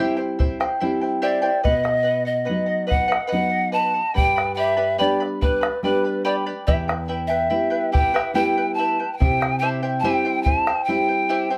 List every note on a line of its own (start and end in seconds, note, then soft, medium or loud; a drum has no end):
0.00 0.65 G3 soft
0.00 0.65 C4 soft
0.00 0.17 E4 medium
0.00 0.66 E4 medium
0.00 0.18 G4 medium
0.00 0.17 C5 medium
0.00 0.18 E5 medium
0.00 0.15 G5 loud
0.17 0.38 E4 soft
0.17 0.38 C5 soft
0.17 0.39 G5 medium
0.39 0.60 E4 medium
0.39 0.60 C5 medium
0.39 0.60 E5 medium
0.39 0.59 G5 medium
0.39 bombo low medium
0.60 0.80 E4 soft
0.60 0.80 C5 medium
0.60 0.80 G5 medium
0.60 bombo rim medium
0.80 1.49 G3 soft
0.80 1.49 C4 soft
0.80 1.02 E4 medium
0.80 1.49 E4 soft
0.80 1.01 C5 medium
0.80 1.02 E5 medium
0.80 1.00 G5 medium
1.01 1.21 E4 soft
1.01 1.21 C5 soft
1.01 1.22 G5 soft
1.22 1.42 E4 medium
1.22 1.41 G4 medium
1.22 1.41 C5 medium
1.22 1.65 D5 medium
1.22 1.42 E5 medium
1.22 1.41 G5 medium
1.42 1.65 E4 medium
1.42 1.65 G4 soft
1.42 1.63 C5 medium
1.42 1.63 E5 medium
1.42 1.64 G5 medium
1.63 2.47 B2 medium
1.63 1.84 B4 medium
1.63 2.26 D#5 loud
1.63 1.83 D#5 medium
1.63 1.82 F#5 medium
1.63 bombo rim soft
1.63 bombo low medium
1.83 2.02 D#5 soft
1.83 2.03 F#5 medium
1.83 bombo rim soft
2.03 2.26 B4 medium
2.03 2.25 D#5 medium
2.03 2.24 F#5 medium
2.25 2.90 D#5 medium
2.25 2.45 D#5 soft
2.25 2.45 F#5 medium
2.45 2.67 B4 medium
2.45 2.66 D#5 medium
2.45 2.65 F#5 medium
2.49 3.16 F#3 soft
2.49 3.16 B3 soft
2.49 3.17 D#4 soft
2.66 2.86 D#5 soft
2.66 2.87 F#5 medium
2.87 3.07 B4 medium
2.87 3.07 D#5 medium
2.87 3.07 F#5 medium
2.87 3.30 F#5 medium
2.92 bombo low medium
3.08 3.26 B4 medium
3.08 3.27 D#5 medium
3.08 3.27 F#5 medium
3.12 bombo rim medium
3.27 3.51 B4 medium
3.27 3.49 D#5 medium
3.27 3.49 F#5 medium
3.27 3.74 F#5 loud
3.32 3.99 F#3 soft
3.32 4.00 B3 soft
3.32 4.00 D#4 medium
3.50 3.71 D#5 soft
3.50 3.72 F#5 soft
3.72 3.94 B4 medium
3.72 3.93 D#5 medium
3.72 3.93 F#5 medium
3.72 4.17 A5 medium
3.94 4.15 D#5 soft
3.94 4.14 F#5 soft
4.14 4.97 G2 medium
4.14 4.37 B4 medium
4.14 4.36 D5 medium
4.14 4.36 G5 medium
4.14 4.55 G5 loud
4.14 4.35 B5 medium
4.14 bombo low medium
4.36 4.56 B4 soft
4.36 4.56 D5 soft
4.36 4.57 B5 soft
4.36 bombo rim soft
4.55 4.76 G4 medium
4.55 4.76 B4 medium
4.55 4.75 D5 medium
4.55 5.01 E5 medium
4.55 4.60 G5 medium
4.55 4.76 G5 medium
4.55 4.75 B5 medium
4.77 4.97 G4 soft
4.77 4.97 B4 medium
4.77 4.98 D5 medium
4.77 4.98 G5 soft
4.77 4.98 B5 medium
4.98 5.68 G3 soft
4.98 5.67 B3 soft
4.98 5.68 D4 soft
4.98 5.20 G4 medium
4.98 5.20 B4 medium
4.98 5.19 D5 medium
4.98 5.23 D5 medium
4.98 5.21 G5 medium
4.98 5.19 B5 medium
5.20 5.40 B4 soft
5.20 5.41 D5 soft
5.20 5.41 B5 soft
5.20 bombo rim soft
5.41 5.61 B4 soft
5.41 5.81 B4 medium
5.41 5.61 D5 medium
5.41 5.63 G5 soft
5.41 5.60 B5 medium
5.41 bombo rim soft
5.41 bombo low medium
5.61 5.83 B4 soft
5.61 5.84 D5 soft
5.61 5.83 B5 soft
5.61 bombo rim medium
5.83 6.50 G3 soft
5.83 6.51 B3 soft
5.83 6.51 D4 medium
5.83 6.23 B4 medium
5.83 6.05 B4 medium
5.83 6.04 D5 medium
5.83 6.05 G5 medium
5.83 6.03 B5 medium
5.83 bombo rim soft
6.04 6.24 B4 soft
6.04 6.23 D5 soft
6.04 6.24 B5 soft
6.25 6.46 G4 medium
6.25 6.46 B4 medium
6.25 6.45 D5 medium
6.25 6.35 D5 medium
6.25 6.45 G5 medium
6.25 6.45 B5 medium
6.25 bombo rim soft
6.46 6.66 G4 soft
6.46 6.67 B4 soft
6.46 6.67 D5 medium
6.46 6.67 G5 medium
6.46 6.67 B5 medium
6.67 7.49 E2 medium
6.67 6.89 E4 medium
6.67 6.88 G4 medium
6.67 6.88 B4 medium
6.67 6.75 E5 medium
6.67 6.87 E5 medium
6.67 6.87 G5 medium
6.67 bombo rim soft
6.67 bombo low medium
6.88 7.08 E4 soft
6.88 7.07 B4 soft
6.88 7.08 G5 soft
6.88 bombo rim medium
7.08 7.29 E4 medium
7.08 7.29 B4 medium
7.08 7.30 E5 medium
7.08 7.28 G5 medium
7.27 7.49 E4 soft
7.27 7.49 B4 soft
7.27 7.94 E5 medium
7.27 7.49 G5 medium
7.50 8.18 G3 soft
7.50 8.18 B3 soft
7.50 7.70 E4 medium
7.50 8.19 E4 soft
7.50 7.70 B4 medium
7.50 7.72 E5 medium
7.50 7.69 G5 medium
7.70 7.91 E4 soft
7.70 7.92 B4 medium
7.70 7.92 G5 medium
7.92 8.14 E4 medium
7.92 8.14 G4 medium
7.92 8.13 B4 medium
7.92 8.14 E5 medium
7.92 8.34 G5 loud
7.92 8.13 G5 medium
7.92 bombo low medium
8.14 8.34 E4 medium
8.14 8.34 G4 medium
8.14 8.34 B4 medium
8.14 8.34 E5 medium
8.14 8.34 G5 medium
8.14 bombo rim medium
8.34 9.02 G3 soft
8.34 9.03 B3 soft
8.34 8.57 E4 medium
8.34 9.03 E4 medium
8.34 8.57 G4 medium
8.34 8.56 B4 medium
8.34 8.57 E5 medium
8.34 8.76 G5 medium
8.34 8.56 G5 medium
8.57 8.78 E4 soft
8.57 8.78 B4 soft
8.57 8.78 G5 soft
8.74 9.13 A5 medium
8.78 8.99 E4 medium
8.78 8.99 B4 medium
8.78 8.99 E5 medium
8.78 8.98 G5 medium
9.00 9.19 E4 soft
9.00 9.20 B4 soft
9.00 9.20 G5 soft
9.13 9.58 G5 loud
9.13 9.19 A5 medium
9.20 10.02 C3 medium
9.20 9.41 E4 medium
9.20 9.40 C5 medium
9.20 9.41 E5 medium
9.20 9.39 G5 medium
9.20 bombo rim soft
9.20 bombo low medium
9.40 9.61 E4 soft
9.40 9.61 C5 soft
9.40 9.62 G5 soft
9.40 bombo rim medium
9.59 9.82 E4 medium
9.59 9.83 G4 medium
9.59 9.82 C5 medium
9.59 9.83 E5 medium
9.59 9.69 A5 medium
9.63 9.81 G5 medium
9.83 10.04 E4 medium
9.83 10.03 G4 soft
9.83 10.03 C5 medium
9.83 10.03 E5 soft
9.83 10.04 G5 medium
10.00 10.71 G3 soft
10.00 10.71 C4 soft
10.00 10.71 E4 soft
10.00 10.44 G5 medium
10.04 10.25 E4 medium
10.04 10.25 G4 medium
10.04 10.25 C5 medium
10.04 10.25 E5 medium
10.04 10.24 G5 medium
10.25 10.45 E4 soft
10.25 10.46 C5 soft
10.25 10.45 G5 medium
10.43 10.67 E4 medium
10.43 10.67 C5 medium
10.43 10.67 E5 medium
10.43 10.66 G5 medium
10.43 10.86 A5 medium
10.43 bombo low medium
10.67 10.88 E4 soft
10.67 10.88 C5 soft
10.67 10.88 G5 medium
10.67 bombo rim medium
10.84 11.56 G3 soft
10.84 11.09 E5 soft
10.84 11.50 G5 loud
10.89 11.56 C4 soft
10.89 11.09 E4 medium
10.89 11.56 E4 medium
10.89 11.08 C5 medium
10.89 11.07 G5 medium
11.08 11.29 E4 soft
11.08 11.29 C5 soft
11.08 11.29 G5 medium
11.29 11.49 E4 medium
11.29 11.50 G4 medium
11.29 11.50 C5 medium
11.29 11.50 E5 medium
11.29 11.49 G5 medium
11.50 11.58 E4 medium
11.50 11.58 G4 soft
11.50 11.58 C5 soft
11.50 11.58 E5 medium
11.50 11.58 G5 medium